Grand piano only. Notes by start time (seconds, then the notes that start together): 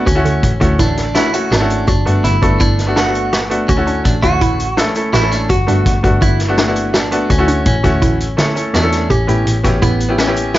0.15 A3 C#4 E4 F#4
0.60 A3 C#4 E4 F#4
1.14 A3 C#4 E4 F#4
1.33 A3 C#4 E4 F#4
1.60 A3 C#4 E4 F#4
2.05 A3 B3 D4 F#4
2.42 A3 B3 D4 A4
2.87 A3 B3 D4 F#4
3.05 A3 B3 D4 F#4
3.50 A3 B3 D4 F#4
3.77 A3 C#4 E4 F#4
4.22 A3 C#4 E4 F#4
4.77 A3 C#4 E4 A4
4.95 A3 C#4 E4 A4
5.21 A3 C#4 E4 A4
5.67 A3 B3 D4 F#4
6.03 A3 B3 D4 F#4
6.48 A3 B3 D4 F#4
6.67 A3 B3 D4 F#4
7.11 A3 B3 D4 F#4
7.38 A3 C#4 E4 F#4
7.83 A3 C#4 E4 F#4
8.37 A3 C#4 E4 A4
8.55 A3 C#4 E4 A4
8.82 A3 C#4 E4 A4
9.27 B3 C#4 E4 G4
9.63 B3 C#4 E4 G4
10.09 B3 C#4 E4 G4
10.27 B3 C#4 E4 G4